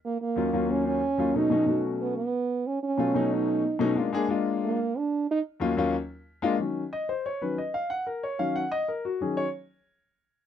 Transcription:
<<
  \new Staff \with { instrumentName = "French horn" } { \time 4/4 \key ees \minor \tempo 4 = 183 bes8 bes4. des'8 des'4. | dis'4. r8 b8 b4. | des'8 des'4. dis'4. r8 | r2 bes4 d'4 |
ees'8 r2. r8 | r1 | r1 | r1 | }
  \new Staff \with { instrumentName = "Grand piano" } { \time 4/4 \key ees \minor r4 <ees, ges bes des' f'>8 <ees, ges bes des' f'>4. r8 <ees, ges bes des' f'>8 | <b, fis a des' dis'>8 <b, fis a des' dis'>8 <b, fis a des' fis'>4. r4. | r4 <b, fis a des' f'>8 <b, fis a des' dis'>4. r8 <b, fis a des' dis'>8 | <aes bes d' f'>8 <aes bes d' aes'>8 <aes bes d' f'>4. r4. |
r4 <ees, ges bes des' f'>8 <ees, ges bes des' f'>8 r4. <aes bes d' f'>8 | <ees ges des'>8 r8 ees''8 c''8 des''8 <ees ges des' ces''>8 ees''8 f''8 | ges''8 bes'8 des''8 <ees ges des' f''>8 ges''8 ees''8 bes'8 ges'8 | <ees ges des' aes'>8 des''8 r2. | }
>>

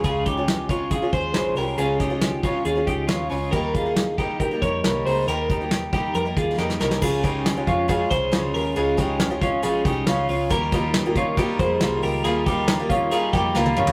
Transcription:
<<
  \new Staff \with { instrumentName = "Clean electric guitar" } { \time 4/4 \key des \lydian \tempo 4 = 138 <f' aes'>8 <ees' g'>4 <des' f'>8 <f' aes'>8 <aes' c''>4 <g' bes'>8 | <f' aes'>8 <ees' g'>4 <des' f'>8 <f' aes'>8 <ees' g'>8 <des' f'>8 <des' f'>8 | <g' bes'>8 <f' aes'>4 <ees' g'>8 <g' bes'>8 <bes' des''>4 <aes' c''>8 | <g' bes'>8 <ees' g'>4 <ees' g'>8 <g' bes'>8 <f' aes'>8 <ees' g'>8 <g' bes'>8 |
<f' aes'>8 <ees' g'>4 <des' f'>8 <f' aes'>8 <aes' c''>4 <g' bes'>8 | <f' aes'>8 <ees' g'>4 <des' f'>8 <f' aes'>8 <ees' g'>8 <des' f'>8 <des' f'>8 | <g' bes'>8 <ees' g'>4 <des' f'>8 <ees' g'>8 <aes' c''>4 <g' bes'>8 | <f' aes'>8 <ees' g'>4 <des' f'>8 <f' aes'>8 <ees' g'>8 <bes f'>8 <des' f'>8 | }
  \new Staff \with { instrumentName = "Twelve-string acoustic guitar" } { \time 4/4 \key des \lydian <des aes des' f'>8. <aes des' f'>8. <des aes des' f'>8. <aes des' f'>8. <des aes des' f'>8 <des aes des' f'>8 | <des aes des' f'>8. <aes des' f'>8. <des aes des' f'>8. <aes des' f'>8. <des aes des' f'>8 <des aes des' f'>8 | <ees g bes ees'>8. <bes ees'>8. <ees g bes ees'>8. <g bes ees'>8. <ees g bes ees'>8 <ees g bes ees'>8 | <ees g bes ees'>8. <g bes ees'>8. <ees g bes ees'>8. <g bes ees'>8. <ees g bes ees'>8 <ees g bes ees'>8 |
<des aes des' f'>8 <des aes des' f'>8. <des aes des' f'>8. <des aes des' f'>8 <des aes des' f'>8 <des aes des' f'>4 | <des aes des' f'>8 <des aes des' f'>8. <des aes des' f'>8. <des aes des' f'>8 <des aes des' f'>8 <des aes des' f'>4 | <ees g bes f'>8 <ees g bes f'>8. <ees g bes f'>8. <ees g bes f'>8 <ees g bes f'>8 <ees g bes f'>4 | <ees g bes f'>8 <ees g bes f'>8. <ees g bes f'>8. <ees g bes f'>8 <ees g bes f'>8 <ees g bes f'>4 | }
  \new Staff \with { instrumentName = "Picked electric bass" } { \clef bass \time 4/4 \key des \lydian des,2~ des,8 ees,8 bes,,8 c,8 | des,2 ees,8 des,8 ees,8 des,8 | ees,2~ ees,8 f,8 c,8 des,8 | ees,2 f,8 ees,8 f,8 c,8 |
des,4. f,4 c,8 des,8 ees,8 | des,2 bes,,8 c,8 des,8 des,8 | ees,2~ ees,8 f,8 c,8 des,8 | ees,2~ ees,8 f,8 des,8 g,,8 | }
  \new DrumStaff \with { instrumentName = "Drums" } \drummode { \time 4/4 <hh bd>8 <hh bd>8 <hh sn>8 <hh bd>8 <hh bd>8 <hh bd>8 <hh sn>8 hho8 | hh8 <hh bd sn>8 <hh sn>8 <hh bd>8 hh8 <hh bd>8 <hh sn>8 hho8 | <hh bd>8 <hh bd>8 <hh sn>8 <hh bd>8 <hh bd>8 <hh bd>8 <hh sn>8 hho8 | hh8 <hh bd>8 <hh sn>8 <hh bd>8 hh8 <hh bd>8 sn16 sn16 sn16 sn16 |
<cymc bd>8 <hh bd sn>8 <hh sn>8 <hh bd>8 <hh bd>8 <hh bd>8 <hh sn>8 hho8 | hh8 <hh bd>8 <hh sn>8 <hh bd>8 hh8 <hh bd>8 <hh sn>8 hho8 | <hh bd>8 <hh bd sn>8 <hh sn>8 <hh bd>8 <hh bd>8 <hh bd>8 <hh sn>8 hho8 | hh8 <hh bd>8 <hh sn>8 <hh bd>8 hh8 <hh bd>8 sn16 tommh16 toml16 tomfh16 | }
>>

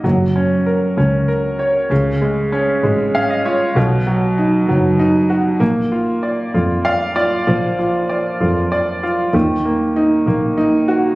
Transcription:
<<
  \new Staff \with { instrumentName = "Upright piano" } { \time 6/8 \key bes \phrygian \tempo 4. = 65 << { r2. | r2 f''16 ees''16 des''8 | r2. | r2 f''8 d''8 |
r2. | r2. | } \\ { ges8 des'8 bes'8 des'8 bes'8 des''8 | des8 aes8 des'8 aes8 des'8 f'8 | b,8 fis8 dis'8 fis8 dis'8 fis'8 | bes8 f'8 d''8 f'8 d''8 f'8 |
f8 f'8 d''8 f'8 d''8 f'8 | ees8 bes8 ees'8 bes8 ees'8 ges'8 | } >> }
  \new Staff \with { instrumentName = "Double bass" } { \clef bass \time 6/8 \key bes \phrygian ges,,4. des,4. | des,4. aes,,4. | b,,4. fis,,4. | bes,,4. f,4. |
bes,,4. f,4. | ees,4. bes,,4. | }
>>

